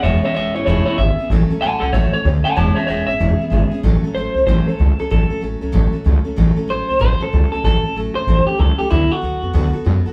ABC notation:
X:1
M:4/4
L:1/8
Q:"Swing" 1/4=189
K:A
V:1 name="Clean electric guitar"
[ce] [ce] [ce] [Ec] [Ec] [Ec] e2 | z2 [fa] [Af] [ce] c z [fa] | [ca] [ce] [ce] e4- e | z2 =c2 c A2 A |
A2 z6 | z2 =c2 c A2 A | A2 z =c2 =G A G | E F4 z3 |]
V:2 name="Steel-string acoustic guitar"
[E,G,B,CG] [B,CG] [G,B,CG] [B,CG] [E,G,B,CG] [B,CG] [G,B,CG] [B,CG] | [A,,E,F,A,CA] [F,A,CA] [F,A,CA] [F,A,CA] [A,,E,F,A,CA] [F,A,CA] [F,A,CA] [F,A,CA] | [E,G,B,CG] [B,CG] [G,B,CG] [B,CG] [E,G,B,CG] [B,CG] [G,B,CG] [B,CG] | [A,,E,F,A,CA] [F,A,CA] [F,A,CA] [F,A,CA] [A,,E,F,A,CA] [F,A,CA] [F,A,CA] [F,A,CA] |
[A,,E,F,A,CA] [F,A,CA] [F,A,CA] [F,A,CA] [A,,E,F,A,CA] [F,A,CA] [F,A,CA] [F,A,CA] | [A,,E,F,A,CA] [F,A,CA] [F,A,CA] [F,A,CA] [A,,E,F,A,CA] [F,A,CA] [F,A,CA] [F,A,CA] | [A,,E,F,A,CA] [F,A,CA] [F,A,CA] [F,A,CA] [A,,E,F,A,CA] [F,A,CA] [F,A,CA] [F,A,CA] | [D,F,B,FA] [B,FA] [F,B,FA] [B,FA] [D,F,B,FA] [B,FA] [F,B,FA] [B,FA] |]
V:3 name="Upright bass" clef=bass
E,,, z E,,, G,,, E,,, z G,,, z | A,,, z A,,, C,, A,,, z D,, z | E,,, z E,,, G,,, E,,, z G,,, z | A,,, z A,,, C,, A,,, z C,, z |
A,,, z A,,, C,, A,,, z C,, z | A,,, z A,,, C,, A,,, z C,, z | A,,, z A,,, C,, A,,, z C,, z | D,, z D,, F,, D,, z F,, z |]